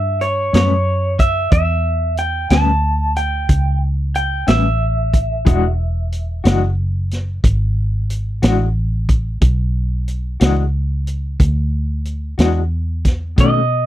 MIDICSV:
0, 0, Header, 1, 5, 480
1, 0, Start_track
1, 0, Tempo, 659341
1, 1104, Time_signature, 12, 3, 24, 8
1, 10091, End_track
2, 0, Start_track
2, 0, Title_t, "Clean electric guitar"
2, 0, Program_c, 0, 27
2, 0, Note_on_c, 0, 76, 79
2, 155, Note_on_c, 0, 73, 74
2, 168, Note_off_c, 0, 76, 0
2, 392, Note_off_c, 0, 73, 0
2, 400, Note_on_c, 0, 73, 72
2, 872, Note_on_c, 0, 76, 72
2, 886, Note_off_c, 0, 73, 0
2, 1091, Note_off_c, 0, 76, 0
2, 1110, Note_on_c, 0, 76, 80
2, 1556, Note_off_c, 0, 76, 0
2, 1592, Note_on_c, 0, 79, 72
2, 1824, Note_off_c, 0, 79, 0
2, 1827, Note_on_c, 0, 81, 85
2, 2303, Note_off_c, 0, 81, 0
2, 2306, Note_on_c, 0, 79, 76
2, 2753, Note_off_c, 0, 79, 0
2, 3027, Note_on_c, 0, 79, 85
2, 3246, Note_off_c, 0, 79, 0
2, 3263, Note_on_c, 0, 76, 81
2, 4670, Note_off_c, 0, 76, 0
2, 9759, Note_on_c, 0, 75, 83
2, 10091, Note_off_c, 0, 75, 0
2, 10091, End_track
3, 0, Start_track
3, 0, Title_t, "Clean electric guitar"
3, 0, Program_c, 1, 27
3, 386, Note_on_c, 1, 61, 61
3, 393, Note_on_c, 1, 59, 56
3, 401, Note_on_c, 1, 55, 50
3, 404, Note_on_c, 1, 45, 52
3, 530, Note_off_c, 1, 61, 0
3, 533, Note_off_c, 1, 59, 0
3, 537, Note_off_c, 1, 55, 0
3, 539, Note_off_c, 1, 45, 0
3, 1825, Note_on_c, 1, 61, 63
3, 1833, Note_on_c, 1, 59, 57
3, 1837, Note_on_c, 1, 55, 50
3, 1841, Note_on_c, 1, 45, 47
3, 1967, Note_off_c, 1, 61, 0
3, 1971, Note_off_c, 1, 59, 0
3, 1973, Note_off_c, 1, 55, 0
3, 1975, Note_off_c, 1, 45, 0
3, 3253, Note_on_c, 1, 61, 59
3, 3261, Note_on_c, 1, 59, 52
3, 3266, Note_on_c, 1, 55, 51
3, 3268, Note_on_c, 1, 45, 47
3, 3400, Note_off_c, 1, 61, 0
3, 3404, Note_off_c, 1, 59, 0
3, 3406, Note_off_c, 1, 55, 0
3, 3407, Note_off_c, 1, 45, 0
3, 3968, Note_on_c, 1, 52, 79
3, 3976, Note_on_c, 1, 56, 75
3, 3984, Note_on_c, 1, 62, 75
3, 3988, Note_on_c, 1, 66, 84
3, 4117, Note_off_c, 1, 52, 0
3, 4121, Note_off_c, 1, 56, 0
3, 4125, Note_off_c, 1, 62, 0
3, 4127, Note_off_c, 1, 66, 0
3, 4688, Note_on_c, 1, 66, 67
3, 4694, Note_on_c, 1, 62, 60
3, 4699, Note_on_c, 1, 56, 56
3, 4703, Note_on_c, 1, 52, 61
3, 4837, Note_off_c, 1, 66, 0
3, 4840, Note_off_c, 1, 62, 0
3, 4842, Note_off_c, 1, 56, 0
3, 4844, Note_off_c, 1, 52, 0
3, 6132, Note_on_c, 1, 66, 72
3, 6139, Note_on_c, 1, 62, 69
3, 6144, Note_on_c, 1, 56, 64
3, 6149, Note_on_c, 1, 52, 58
3, 6279, Note_off_c, 1, 66, 0
3, 6282, Note_off_c, 1, 62, 0
3, 6285, Note_off_c, 1, 56, 0
3, 6288, Note_off_c, 1, 52, 0
3, 7571, Note_on_c, 1, 66, 62
3, 7577, Note_on_c, 1, 62, 66
3, 7584, Note_on_c, 1, 56, 58
3, 7586, Note_on_c, 1, 52, 58
3, 7719, Note_off_c, 1, 66, 0
3, 7722, Note_off_c, 1, 62, 0
3, 7726, Note_off_c, 1, 56, 0
3, 7727, Note_off_c, 1, 52, 0
3, 9011, Note_on_c, 1, 66, 64
3, 9015, Note_on_c, 1, 62, 64
3, 9022, Note_on_c, 1, 56, 53
3, 9023, Note_on_c, 1, 52, 57
3, 9161, Note_off_c, 1, 66, 0
3, 9163, Note_off_c, 1, 62, 0
3, 9167, Note_off_c, 1, 52, 0
3, 9167, Note_off_c, 1, 56, 0
3, 9729, Note_on_c, 1, 47, 61
3, 9736, Note_on_c, 1, 51, 63
3, 9740, Note_on_c, 1, 57, 68
3, 9745, Note_on_c, 1, 61, 69
3, 9881, Note_off_c, 1, 47, 0
3, 9885, Note_off_c, 1, 51, 0
3, 9886, Note_off_c, 1, 57, 0
3, 9889, Note_off_c, 1, 61, 0
3, 10091, End_track
4, 0, Start_track
4, 0, Title_t, "Fingered electric bass"
4, 0, Program_c, 2, 33
4, 0, Note_on_c, 2, 43, 74
4, 368, Note_off_c, 2, 43, 0
4, 390, Note_on_c, 2, 42, 76
4, 1084, Note_off_c, 2, 42, 0
4, 1106, Note_on_c, 2, 40, 72
4, 1801, Note_off_c, 2, 40, 0
4, 1824, Note_on_c, 2, 38, 73
4, 2520, Note_off_c, 2, 38, 0
4, 2540, Note_on_c, 2, 37, 70
4, 3237, Note_off_c, 2, 37, 0
4, 3261, Note_on_c, 2, 33, 78
4, 3958, Note_off_c, 2, 33, 0
4, 3977, Note_on_c, 2, 28, 72
4, 4675, Note_off_c, 2, 28, 0
4, 4696, Note_on_c, 2, 30, 79
4, 5395, Note_off_c, 2, 30, 0
4, 5413, Note_on_c, 2, 32, 74
4, 6114, Note_off_c, 2, 32, 0
4, 6135, Note_on_c, 2, 33, 85
4, 6835, Note_off_c, 2, 33, 0
4, 6853, Note_on_c, 2, 35, 74
4, 7555, Note_off_c, 2, 35, 0
4, 7580, Note_on_c, 2, 37, 74
4, 8279, Note_off_c, 2, 37, 0
4, 8298, Note_on_c, 2, 38, 70
4, 8999, Note_off_c, 2, 38, 0
4, 9018, Note_on_c, 2, 40, 76
4, 9720, Note_off_c, 2, 40, 0
4, 9740, Note_on_c, 2, 47, 71
4, 10091, Note_off_c, 2, 47, 0
4, 10091, End_track
5, 0, Start_track
5, 0, Title_t, "Drums"
5, 153, Note_on_c, 9, 42, 46
5, 226, Note_off_c, 9, 42, 0
5, 393, Note_on_c, 9, 42, 66
5, 403, Note_on_c, 9, 38, 88
5, 465, Note_off_c, 9, 42, 0
5, 476, Note_off_c, 9, 38, 0
5, 868, Note_on_c, 9, 36, 74
5, 870, Note_on_c, 9, 42, 54
5, 941, Note_off_c, 9, 36, 0
5, 943, Note_off_c, 9, 42, 0
5, 1103, Note_on_c, 9, 42, 72
5, 1106, Note_on_c, 9, 36, 93
5, 1175, Note_off_c, 9, 42, 0
5, 1179, Note_off_c, 9, 36, 0
5, 1581, Note_on_c, 9, 42, 50
5, 1654, Note_off_c, 9, 42, 0
5, 1821, Note_on_c, 9, 42, 68
5, 1832, Note_on_c, 9, 38, 95
5, 1894, Note_off_c, 9, 42, 0
5, 1904, Note_off_c, 9, 38, 0
5, 2303, Note_on_c, 9, 42, 52
5, 2376, Note_off_c, 9, 42, 0
5, 2540, Note_on_c, 9, 42, 75
5, 2542, Note_on_c, 9, 36, 79
5, 2613, Note_off_c, 9, 42, 0
5, 2615, Note_off_c, 9, 36, 0
5, 3022, Note_on_c, 9, 42, 54
5, 3095, Note_off_c, 9, 42, 0
5, 3258, Note_on_c, 9, 42, 73
5, 3268, Note_on_c, 9, 38, 95
5, 3330, Note_off_c, 9, 42, 0
5, 3340, Note_off_c, 9, 38, 0
5, 3738, Note_on_c, 9, 36, 67
5, 3739, Note_on_c, 9, 42, 57
5, 3811, Note_off_c, 9, 36, 0
5, 3812, Note_off_c, 9, 42, 0
5, 3978, Note_on_c, 9, 42, 73
5, 3979, Note_on_c, 9, 36, 95
5, 4051, Note_off_c, 9, 36, 0
5, 4051, Note_off_c, 9, 42, 0
5, 4458, Note_on_c, 9, 42, 51
5, 4531, Note_off_c, 9, 42, 0
5, 4697, Note_on_c, 9, 42, 69
5, 4707, Note_on_c, 9, 38, 96
5, 4769, Note_off_c, 9, 42, 0
5, 4780, Note_off_c, 9, 38, 0
5, 5178, Note_on_c, 9, 42, 51
5, 5189, Note_on_c, 9, 38, 26
5, 5251, Note_off_c, 9, 42, 0
5, 5261, Note_off_c, 9, 38, 0
5, 5415, Note_on_c, 9, 36, 80
5, 5416, Note_on_c, 9, 42, 69
5, 5488, Note_off_c, 9, 36, 0
5, 5489, Note_off_c, 9, 42, 0
5, 5896, Note_on_c, 9, 42, 54
5, 5969, Note_off_c, 9, 42, 0
5, 6133, Note_on_c, 9, 42, 70
5, 6144, Note_on_c, 9, 38, 94
5, 6206, Note_off_c, 9, 42, 0
5, 6216, Note_off_c, 9, 38, 0
5, 6616, Note_on_c, 9, 36, 71
5, 6617, Note_on_c, 9, 42, 57
5, 6689, Note_off_c, 9, 36, 0
5, 6689, Note_off_c, 9, 42, 0
5, 6853, Note_on_c, 9, 42, 78
5, 6856, Note_on_c, 9, 36, 97
5, 6926, Note_off_c, 9, 42, 0
5, 6929, Note_off_c, 9, 36, 0
5, 7336, Note_on_c, 9, 42, 56
5, 7409, Note_off_c, 9, 42, 0
5, 7575, Note_on_c, 9, 42, 75
5, 7585, Note_on_c, 9, 38, 98
5, 7648, Note_off_c, 9, 42, 0
5, 7658, Note_off_c, 9, 38, 0
5, 8059, Note_on_c, 9, 42, 54
5, 8132, Note_off_c, 9, 42, 0
5, 8298, Note_on_c, 9, 36, 77
5, 8299, Note_on_c, 9, 42, 73
5, 8371, Note_off_c, 9, 36, 0
5, 8372, Note_off_c, 9, 42, 0
5, 8775, Note_on_c, 9, 42, 46
5, 8848, Note_off_c, 9, 42, 0
5, 9017, Note_on_c, 9, 42, 67
5, 9027, Note_on_c, 9, 38, 90
5, 9090, Note_off_c, 9, 42, 0
5, 9100, Note_off_c, 9, 38, 0
5, 9500, Note_on_c, 9, 36, 67
5, 9500, Note_on_c, 9, 42, 53
5, 9510, Note_on_c, 9, 38, 28
5, 9573, Note_off_c, 9, 36, 0
5, 9573, Note_off_c, 9, 42, 0
5, 9583, Note_off_c, 9, 38, 0
5, 9740, Note_on_c, 9, 36, 92
5, 9740, Note_on_c, 9, 42, 70
5, 9813, Note_off_c, 9, 36, 0
5, 9813, Note_off_c, 9, 42, 0
5, 10091, End_track
0, 0, End_of_file